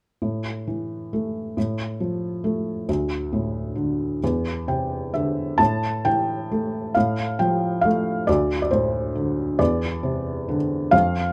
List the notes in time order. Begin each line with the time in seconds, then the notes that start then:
0.22 A2
0.67 E3
1.13 A3
1.57 A2
2.00 F3
2.44 A3
2.89 D2
3.33 A2
3.75 D3
4.24 E2
4.68 C3 G5
5.14 D3 E5
5.58 A2 A5
6.05 E3 G5
6.52 A3
6.95 A2 F5
7.39 F3 G5
7.81 A3 F5
8.27 D2 D5
8.62 D5
8.71 A2 C5
9.15 D3
9.59 E2 D5
10.03 C3
10.49 D3
10.91 F2 F5